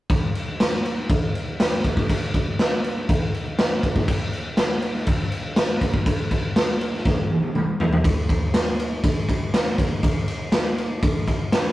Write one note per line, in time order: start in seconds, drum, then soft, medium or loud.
0.10 kick loud
0.10 crash medium
0.35 crash medium
0.60 snare loud
0.60 crash medium
0.85 crash medium
1.10 kick loud
1.10 crash medium
1.35 crash medium
1.60 snare loud
1.60 crash medium
1.84 kick medium
1.84 crash medium
1.97 kick medium
1.97 snare soft
2.10 kick loud
2.10 crash medium
2.34 kick medium
2.34 crash medium
2.59 snare loud
2.59 crash medium
2.84 crash medium
3.09 kick loud
3.09 crash medium
3.34 crash medium
3.59 snare loud
3.59 crash medium
3.83 kick medium
3.83 crash medium
3.96 kick medium
3.96 snare soft
4.08 kick loud
4.08 crash medium
4.33 crash medium
4.57 snare loud
4.57 crash medium
4.82 crash medium
4.94 snare soft
5.07 kick loud
5.07 crash medium
5.32 crash medium
5.56 snare loud
5.56 crash medium
5.81 kick medium
5.81 crash medium
5.94 kick medium
6.06 kick loud
6.06 crash medium
6.31 kick medium
6.31 crash medium
6.56 snare loud
6.56 crash medium
6.81 crash medium
6.94 snare soft
7.05 kick loud
7.05 snare medium
7.30 high tom medium
7.43 high tom medium
7.55 mid tom medium
7.80 floor tom loud
7.93 floor tom medium
8.04 kick loud
8.04 ride medium
8.29 kick medium
8.29 ride medium
8.54 snare loud
8.54 ride medium
8.80 ride medium
9.04 kick loud
9.04 ride medium
9.29 kick medium
9.29 ride medium
9.54 snare loud
9.54 ride loud
9.78 kick medium
9.78 ride medium
10.03 kick loud
10.03 ride medium
10.28 ride medium
10.52 snare loud
10.52 ride loud
10.78 ride medium
11.03 kick loud
11.03 ride medium
11.28 kick medium
11.28 ride medium
11.52 snare loud
11.52 ride medium